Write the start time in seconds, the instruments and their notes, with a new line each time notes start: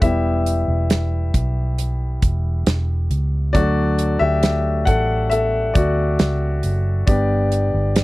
0.01 fingered electric bass E1, grand piano G3 B3 E4 G4 E5, kick, closed hi-hat
0.46 closed hi-hat
0.68 fingered electric bass E1
0.90 snare, closed hi-hat
1.34 fingered electric bass B1, kick, closed hi-hat
1.78 closed hi-hat
2.22 fingered electric bass E1, kick, closed hi-hat
2.67 fingered electric bass E1, snare, closed hi-hat
3.10 fingered electric bass C#2, closed hi-hat
3.53 fingered electric bass D2, grand piano F#3 A3 D4 F#4 D5, kick, closed hi-hat
3.99 closed hi-hat
4.19 fingered electric bass D2, grand piano G4 E5
4.43 snare, closed hi-hat
4.85 fingered electric bass A1, grand piano A4 F#5, kick, closed hi-hat
5.30 grand piano A4 E5, closed hi-hat
5.74 fingered electric bass D2, grand piano F#4 D5, kick, closed hi-hat
6.19 fingered electric bass C#2, snare, closed hi-hat
6.63 fingered electric bass F#1, closed hi-hat
7.07 fingered electric bass G1, grand piano G3 B3 D4 G4 D5, kick, closed hi-hat
7.52 closed hi-hat
7.74 fingered electric bass G1
7.96 snare, closed hi-hat